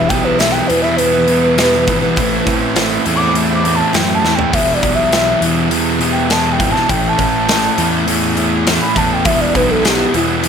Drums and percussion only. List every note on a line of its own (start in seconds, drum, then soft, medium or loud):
0.10 kick medium
0.10 open hi-hat medium
0.40 snare loud
0.40 open hi-hat medium
0.70 open hi-hat medium
0.98 open hi-hat medium
1.28 open hi-hat soft
1.58 snare loud
1.58 open hi-hat medium
1.88 kick medium
1.88 open hi-hat medium
2.17 kick loud
2.17 open hi-hat medium
2.47 kick medium
2.47 open hi-hat medium
2.76 snare loud
2.76 open hi-hat medium
3.06 open hi-hat medium
3.35 open hi-hat medium
3.65 open hi-hat medium
3.94 snare loud
3.94 open hi-hat medium
4.25 snare medium
4.39 floor tom medium
4.53 kick loud
4.53 open hi-hat medium
4.83 kick medium
4.83 open hi-hat medium
5.12 snare loud
5.12 open hi-hat medium
5.42 open hi-hat medium
5.71 open hi-hat medium
6.01 open hi-hat soft
6.30 snare loud
6.30 open hi-hat medium
6.60 kick medium
6.60 open hi-hat medium
6.76 snare soft
6.89 kick loud
6.89 open hi-hat medium
7.19 kick medium
7.19 open hi-hat medium
7.49 snare loud
7.49 open hi-hat medium
7.78 open hi-hat medium
8.08 open hi-hat medium
8.37 open hi-hat soft
8.67 snare loud
8.67 open hi-hat medium
8.96 kick medium
8.96 open hi-hat medium
9.25 kick loud
9.25 open hi-hat medium
9.55 kick medium
9.55 open hi-hat medium
9.85 snare loud
9.85 open hi-hat medium
10.14 open hi-hat medium
10.44 open hi-hat medium